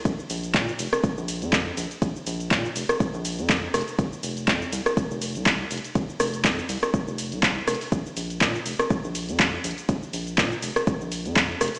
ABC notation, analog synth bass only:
X:1
M:4/4
L:1/16
Q:"Swing 16ths" 1/4=122
K:Fphr
V:1 name="Analog synth bass" clef=bass
B,,, z B,,,2 B,, z F,,, z2 B,,,2 F,,2 z B,,, z | B,,, z B,,,2 B,, z F,,, z2 B,,,2 F,,2 z F,,, z | F,,, z F,,,2 F,, z C,, z2 F,,,2 C,,2 z F,,, z | F,,, z F,,,2 F,, z C,, z2 F,,,2 C,,2 z F,,, z |
B,,, z B,,,2 B,, z F,,, z2 B,,,2 F,,2 z B,,, z | B,,, z B,,,2 B,, z F,,, z2 B,,,2 F,,2 z F,,, z |]